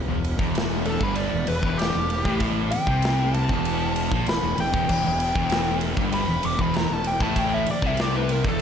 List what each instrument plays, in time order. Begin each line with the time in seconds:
0.08 fingered electric bass E1, distorted electric guitar E2
0.24 ride
0.38 fingered electric bass E1, distorted electric guitar E2, kick
0.55 snare, ride
0.85 lead electric guitar A4, ride
1.01 fingered electric bass G1, distorted electric guitar G2, lead electric guitar B4, kick
1.15 lead electric guitar D5, ride
1.32 fingered electric bass E1, distorted electric guitar E2
1.47 fingered electric bass E1, distorted electric guitar E2, lead electric guitar B4, ride
1.61 fingered electric bass E1, distorted electric guitar E2, kick
1.78 lead electric guitar G4, snare, ride
1.94 fingered electric bass E1, distorted electric guitar E2
2.10 ride
2.25 fingered electric bass A1, distorted electric guitar A2, kick
2.40 kick, ride
2.71 lead electric guitar G5, muted overdriven electric guitar stroke, muted distorted electric guitar stroke, muted fingered electric bass stroke, ride
2.87 fingered electric bass C2, distorted electric guitar C3, kick
3.02 snare, ride
3.34 lead electric guitar A5, ride
3.49 fingered electric bass E1, distorted electric guitar E2, kick
3.65 ride
3.96 ride
4.11 fingered electric bass A#1, distorted electric guitar A#2, kick
4.26 fingered electric bass E1, distorted electric guitar E2, lead electric guitar B5, snare, ride
4.42 fingered electric bass E1, distorted electric guitar E2
4.58 fingered electric bass E1, distorted electric guitar E2, lead electric guitar G5, ride
4.72 fingered electric bass E1, distorted electric guitar E2, kick
4.89 fingered electric bass E1, distorted electric guitar E2, kick, crash
5.04 fingered electric bass E1, distorted electric guitar E2
5.20 ride
5.35 fingered electric bass E1, distorted electric guitar E2, kick
5.50 snare, ride
5.81 ride
5.97 fingered electric bass G1, distorted electric guitar G2, kick
6.12 lead electric guitar B5, ride
6.28 fingered electric bass E1, distorted electric guitar E2
6.43 fingered electric bass E1, distorted electric guitar E2, lead electric guitar D6, ride
6.59 fingered electric bass E1, distorted electric guitar E2, lead electric guitar B5, kick
6.74 lead electric guitar A#5, snare, ride
6.90 fingered electric bass E1, distorted electric guitar E2, lead electric guitar A5
7.04 lead electric guitar G5, ride
7.20 fingered electric bass A1, distorted electric guitar A2, lead electric guitar A5, kick
7.36 lead electric guitar G5, kick, ride
7.54 lead electric guitar E5
7.67 muted distorted electric guitar stroke, muted fingered electric bass stroke, muted overdriven electric guitar stroke, ride
7.71 lead electric guitar D5
7.82 fingered electric bass C2, distorted electric guitar C3, kick
7.86 lead electric guitar E5
7.97 lead electric guitar D5, snare, ride
8.17 lead electric guitar B4
8.29 lead electric guitar A#4, ride
8.45 fingered electric bass E1, distorted electric guitar E2, lead electric guitar A4, kick